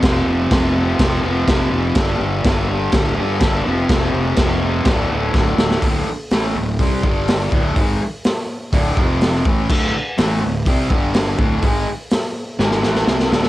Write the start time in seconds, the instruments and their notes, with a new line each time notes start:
0.03 fingered electric bass F1, distorted electric guitar F2 C3, kick, snare, crash
0.07 distorted electric guitar F3
0.26 fingered electric bass F1
0.51 fingered electric bass F1, distorted electric guitar F2 C3, kick, snare, crash
0.56 distorted electric guitar F3
0.76 distorted electric guitar F3
0.81 distorted electric guitar C3
0.99 fingered electric bass F1, kick, snare, crash
1.24 fingered electric bass F1, distorted electric guitar F3
1.29 distorted electric guitar C3
1.48 fingered electric bass F1, distorted electric guitar F2 C3, kick, snare, crash
1.52 distorted electric guitar F3
1.71 fingered electric bass F1
1.95 fingered electric bass G1, distorted electric guitar G2 D3, kick, snare, crash
2.01 distorted electric guitar G3
2.20 fingered electric bass G1
2.44 fingered electric bass G1, distorted electric guitar G2 D3 G3, kick, snare, crash
2.68 distorted electric guitar G3
2.72 distorted electric guitar D3
2.92 fingered electric bass D1, kick, snare, crash
3.16 fingered electric bass G2, distorted electric guitar G3
3.20 distorted electric guitar D3
3.39 fingered electric bass G1, distorted electric guitar G2 D3, kick, snare, crash
3.44 distorted electric guitar G3
3.64 fingered electric bass F1, distorted electric guitar C3 F3
3.68 distorted electric guitar F2
3.88 fingered electric bass F1, distorted electric guitar F2 C3, kick, snare, crash
3.92 distorted electric guitar F3
4.14 fingered electric bass F1
4.36 fingered electric bass F1, distorted electric guitar F2 C3, kick, snare, crash
4.41 distorted electric guitar F3
4.62 distorted electric guitar F3
4.66 distorted electric guitar C3
4.85 fingered electric bass D1, distorted electric guitar D2 A2, kick, snare, crash
4.90 distorted electric guitar D3
5.10 fingered electric bass D1, distorted electric guitar D3
5.15 distorted electric guitar A2
5.34 fingered electric bass D1, distorted electric guitar D2 A2, kick, snare
5.39 distorted electric guitar D3
5.58 fingered electric bass D1, snare
5.71 snare
5.82 fingered electric bass D1, distorted electric guitar D2 A2 D3, kick, open hi-hat
6.09 muted distorted electric guitar stroke
6.31 fingered electric bass A1, distorted electric guitar A2 E3 A3, snare, open hi-hat
6.55 fingered electric bass D1, distorted electric guitar D2 A2
6.79 fingered electric bass C2, distorted electric guitar C3 G3 C4, kick, open hi-hat
7.03 fingered electric bass G1, distorted electric guitar G2 D3 G3, kick
7.28 snare, open hi-hat
7.52 fingered electric bass D1, distorted electric guitar D2 A2 D3, kick
7.76 fingered electric bass G#1, distorted electric guitar G#2 D#3 G#3, kick, open hi-hat
8.24 snare, open hi-hat
8.72 fingered electric bass D1, distorted electric guitar D2 A2 D3, kick, open hi-hat
8.97 fingered electric bass F1, distorted electric guitar F2 C3 F3, kick
9.21 snare, open hi-hat
9.45 fingered electric bass A1, distorted electric guitar A2 E3 A3, kick
9.69 fingered electric bass D1, distorted electric guitar D2 A2 D3, kick, crash
9.94 muted distorted electric guitar stroke
10.17 fingered electric bass A1, distorted electric guitar A2 E3 A3, snare, open hi-hat
10.42 fingered electric bass D1, distorted electric guitar D2 A2
10.66 fingered electric bass C2, distorted electric guitar C3 G3 C4, kick, open hi-hat
10.90 fingered electric bass G1, distorted electric guitar G2 D3 G3, kick
11.14 snare, open hi-hat
11.38 fingered electric bass D1, distorted electric guitar D2 A2 D3, kick
11.62 fingered electric bass G#1, distorted electric guitar G#2 D#3 G#3, kick, open hi-hat
12.11 snare, open hi-hat
12.59 fingered electric bass G#1, distorted electric guitar G#2 D#3 G#3, snare
12.71 snare
12.82 fingered electric bass A1, distorted electric guitar A2 E3 A3, snare
12.95 snare
13.07 fingered electric bass C2, distorted electric guitar C3 G3 C4, snare
13.19 snare
13.31 fingered electric bass D1, distorted electric guitar D2 A2 D3, snare
13.43 snare